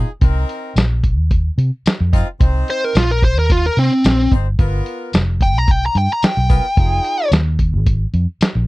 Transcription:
0.21 C2 C4 D#4 A#4, kick, closed hi-hat
0.49 closed hi-hat
0.76 A#1, snare, closed hi-hat, tambourine
1.04 kick, closed hi-hat
1.17 D#2
1.31 kick, closed hi-hat
1.58 C3, closed hi-hat
1.86 muted fingered electric bass stroke, snare, closed hi-hat, tambourine
2.00 F2
2.12 C4 D#4 F4, kick, closed hi-hat
2.40 C2 C4 D#4 C5, kick, closed hi-hat
2.68 C5, closed hi-hat
2.84 A#4
2.95 A#1 F4, snare, closed hi-hat, tambourine
3.11 A#4
3.22 C5, kick, closed hi-hat
3.37 D#2 A#4
3.50 F4, kick, closed hi-hat
3.66 A#4
3.77 C3 C4, closed hi-hat
4.04 A#1, snare, closed hi-hat, tambourine
4.31 G1 C4 D#4 C5, kick, closed hi-hat
4.59 G1 B3 F4 A#4, kick, closed hi-hat
4.86 closed hi-hat
5.13 F1, snare, closed hi-hat, tambourine
5.41 G5, kick, closed hi-hat
5.56 B1 A#5
5.68 G5, kick, closed hi-hat
5.86 A#5
5.95 G2 G5, closed hi-hat
6.13 A#5
6.22 G5, muted fingered electric bass stroke, snare, closed hi-hat, tambourine
6.37 B1
6.49 B3 F4 A#4, kick, closed hi-hat
6.77 F1 D#4 F4 G#4, kick, closed hi-hat
7.05 closed hi-hat
7.31 D#2, snare, closed hi-hat, tambourine
7.59 kick, closed hi-hat
7.73 G#1
7.86 kick, closed hi-hat
8.14 F2, closed hi-hat
8.41 muted fingered electric bass stroke, snare, closed hi-hat, tambourine
8.55 A#1

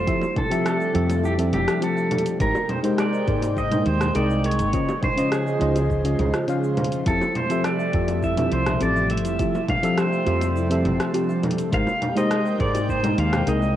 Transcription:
Already playing: C3 F3 G3 A3 C5
0.06 F3 C4 D4 E4 G4 A4 E5, kick, closed hi-hat, cabasa
0.21 high bongo, cabasa
0.36 A4, kick, closed hi-hat, low conga
0.50 F3 C4 G4 A4 E5, closed hi-hat, cabasa
0.65 G4 A4, cross-stick, closed hi-hat, cabasa
0.80 E5, cabasa
0.94 F2 F3 C4 G4 A4 E5, closed hi-hat
1.09 closed hi-hat, high bongo, cabasa
1.23 E4 G4, cabasa
1.38 F3 C4 G4 A4 E5, closed hi-hat, cabasa
1.53 F1 G4, closed hi-hat, low conga
1.68 cross-stick, closed hi-hat, cabasa
1.81 F3 C4 G4 A4, closed hi-hat, cabasa
1.97 E5, cabasa
2.11 A4, closed hi-hat, low conga
2.19 closed hi-hat
2.26 closed hi-hat, cabasa
2.39 G#1 G#3 A#3 D#4 G4 A#4 C5 G5, kick, closed hi-hat, cabasa
2.55 high bongo, cabasa
2.69 C5, closed hi-hat, low conga
2.83 G#3 D#4 G4 A#4 C5, closed hi-hat, cabasa
2.98 G#4 D5, cross-stick, closed hi-hat, cabasa
3.13 D#5, cabasa
3.27 G#2 G#3 D#4 A#4 C5 G5, kick, closed hi-hat
3.42 closed hi-hat, high bongo, cabasa
3.57 D#4 D#5, kick, cabasa
3.70 G#3 D#4 A#4 C5 G5, closed hi-hat, low conga, cabasa
3.86 D#2 C5, closed hi-hat
4.01 cross-stick, closed hi-hat, low conga, cabasa
4.15 C2 G#3 D#4 G#4 A#4 D5 D#5 G5, closed hi-hat, cabasa
4.30 D#5, cabasa
4.44 A#4 C#5, closed hi-hat
4.51 closed hi-hat
4.59 G#1, closed hi-hat, cabasa
4.73 C#3 F3 C#4 D#4 F4 C5 D#5, kick, closed hi-hat, cabasa
4.89 high bongo, cabasa
5.02 C5, kick, closed hi-hat, low conga
5.16 C#3 C#4 F4 C5 D#5, closed hi-hat, cabasa
5.31 G#4, cross-stick, closed hi-hat, cabasa
5.46 D#5, cabasa
5.59 C#2 C#3 C#4 F4 C5 D#5, closed hi-hat
5.75 closed hi-hat, high bongo, cabasa
5.90 D#4, kick, cabasa
6.04 C#3 C#4 F4 C5 D#5, closed hi-hat, cabasa
6.19 C#2 G#4, closed hi-hat, low conga
6.34 F4, cross-stick, closed hi-hat, cabasa
6.47 C#3 C#4 F4 C5 F5, closed hi-hat, cabasa
6.64 cabasa
6.77 C5, closed hi-hat, low conga
6.84 closed hi-hat
6.92 closed hi-hat, cabasa
7.06 F1 C3 F3 G3 A3 C4 E4 G4 A4 E5, kick, closed hi-hat, cabasa
7.21 high bongo, cabasa
7.35 C5, closed hi-hat, low conga
7.49 F3 C4 G4 A4 E5, closed hi-hat, cabasa
7.64 G4 D5, cross-stick, closed hi-hat, cabasa
7.79 E5, cabasa
7.93 F2 F3 C4 G4 A4 E5, kick, closed hi-hat
8.08 closed hi-hat, high bongo, cabasa
8.23 E4 E5, kick, cabasa
8.37 F3 C4 G4 A4 E5, closed hi-hat, low conga, cabasa
8.52 C2 C5, closed hi-hat
8.67 cross-stick, closed hi-hat, low conga, cabasa
8.80 A1 F3 C4 G4 A4 D5, closed hi-hat, cabasa
8.96 E5, cabasa
9.10 A4 E5, closed hi-hat
9.17 closed hi-hat
9.25 F1, closed hi-hat, cabasa
9.38 F3 C4 D4 E4 G4 A4 E5, kick, closed hi-hat, cabasa
9.55 high bongo, cabasa
9.68 F5, kick, closed hi-hat, low conga
9.82 F3 C4 G4 A4 E5, closed hi-hat, cabasa
9.98 G4 C5, cross-stick, closed hi-hat, cabasa
10.13 E5, cabasa
10.26 F2 F3 C4 G4 A4 E5, closed hi-hat
10.41 closed hi-hat, high bongo, cabasa
10.56 E4, cabasa
10.70 F3 C4 G4 A4 E5, closed hi-hat, cabasa
10.85 F1, closed hi-hat, low conga
11.00 cross-stick, closed hi-hat, cabasa
11.13 F3 C4 G4 A4, closed hi-hat, cabasa
11.29 E5, cabasa
11.43 A4, closed hi-hat, low conga
11.51 closed hi-hat
11.58 closed hi-hat, cabasa
11.71 G#1 G#3 A#3 D#4 G4 A#4 C5 F5 G5, kick, closed hi-hat, cabasa
11.87 high bongo, cabasa
12.02 closed hi-hat, low conga
12.15 G#3 D#4 G4 A#4 C5 D#5, closed hi-hat, cabasa
12.31 G#4, cross-stick, closed hi-hat, cabasa
12.46 D#5, cabasa
12.59 G#2 G#3 D#4 A#4 C5 D5 G5, kick, closed hi-hat
12.75 closed hi-hat, high bongo, cabasa
12.89 D#4 C5, kick, cabasa
13.03 G#3 D#4 A#4 C5 G5, closed hi-hat, low conga, cabasa
13.18 D#2 F5, closed hi-hat
13.33 cross-stick, closed hi-hat, low conga, cabasa
13.46 C2 G#3 D#4 G#4 A#4 D#5 G5, closed hi-hat, cabasa
13.62 D#5, cabasa

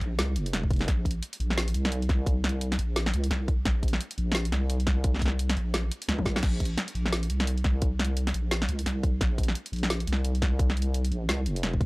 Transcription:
0.01 A#1, open hi-hat
0.18 C#2, snare, closed hi-hat
0.36 F1, closed hi-hat
0.46 open hi-hat
0.54 snare, closed hi-hat
0.64 kick
0.71 kick, closed hi-hat
0.74 closed hi-hat
0.79 snare, closed hi-hat
0.82 closed hi-hat
0.84 closed hi-hat
0.86 A#1, kick, snare, closed hi-hat
0.88 closed hi-hat
1.05 kick, closed hi-hat
1.11 closed hi-hat
1.23 closed hi-hat
1.33 open hi-hat
1.40 A#1, open hi-hat
1.50 snare
1.58 snare, closed hi-hat
1.68 open hi-hat
1.74 C2, closed hi-hat
1.85 snare
1.92 closed hi-hat
2.02 open hi-hat
2.09 kick, snare, closed hi-hat
2.26 kick, closed hi-hat
2.44 snare, closed hi-hat
2.49 closed hi-hat
2.61 closed hi-hat
2.72 snare, open hi-hat
2.79 A#1, closed hi-hat
2.96 snare, closed hi-hat
3.06 snare
3.14 C#2, closed hi-hat
3.24 open hi-hat
3.31 C2, snare, closed hi-hat
3.48 kick, closed hi-hat
3.65 A#1, kick, snare, closed hi-hat
3.83 kick, closed hi-hat
3.88 closed hi-hat
3.93 snare
4.01 closed hi-hat
4.11 open hi-hat
4.18 A#1, open hi-hat
4.32 snare
4.35 snare, closed hi-hat
4.45 open hi-hat
4.52 C2, snare, closed hi-hat
4.70 closed hi-hat
4.80 open hi-hat
4.87 kick, snare, closed hi-hat
5.04 kick, closed hi-hat
5.14 snare
5.16 snare
5.19 kick, snare, closed hi-hat
5.26 snare
5.28 snare
5.39 closed hi-hat
5.49 snare, open hi-hat
5.57 A#1, open hi-hat
5.74 snare, closed hi-hat
5.91 closed hi-hat
6.02 open hi-hat
6.08 C#2, snare, closed hi-hat
6.19 kick, high tom
6.25 C2, kick, snare, open hi-hat
6.36 snare
6.43 A#1, kick, snare, closed hi-hat, crash
6.60 kick, closed hi-hat
6.65 closed hi-hat
6.78 snare, closed hi-hat
6.88 open hi-hat
6.95 A#1, open hi-hat
7.05 snare
7.12 snare, closed hi-hat
7.23 open hi-hat
7.29 C2, closed hi-hat
7.40 snare
7.47 closed hi-hat
7.57 open hi-hat
7.64 kick, snare, closed hi-hat
7.82 kick, closed hi-hat
7.99 snare, closed hi-hat
8.04 closed hi-hat
8.17 closed hi-hat
8.27 snare, open hi-hat
8.34 A#1, closed hi-hat
8.51 snare, closed hi-hat
8.62 snare
8.68 C#2, closed hi-hat
8.79 open hi-hat
8.86 C2, snare, closed hi-hat
9.03 kick, closed hi-hat
9.21 A#1, kick, snare, closed hi-hat
9.38 kick, closed hi-hat
9.43 closed hi-hat
9.48 snare
9.55 closed hi-hat
9.66 open hi-hat
9.72 A#1, open hi-hat
9.76 open hi-hat
9.79 open hi-hat
9.83 snare
9.90 snare, closed hi-hat
10.00 open hi-hat
10.07 C2, closed hi-hat
10.13 snare
10.25 closed hi-hat
10.35 open hi-hat
10.42 kick, snare, closed hi-hat
10.59 kick, closed hi-hat
10.70 snare
10.77 closed hi-hat
10.82 closed hi-hat
10.95 closed hi-hat
11.05 open hi-hat
11.11 A#1, open hi-hat
11.28 C#2, snare, closed hi-hat
11.46 F1, closed hi-hat
11.56 open hi-hat
11.63 snare, closed hi-hat
11.74 kick
11.81 kick, closed hi-hat

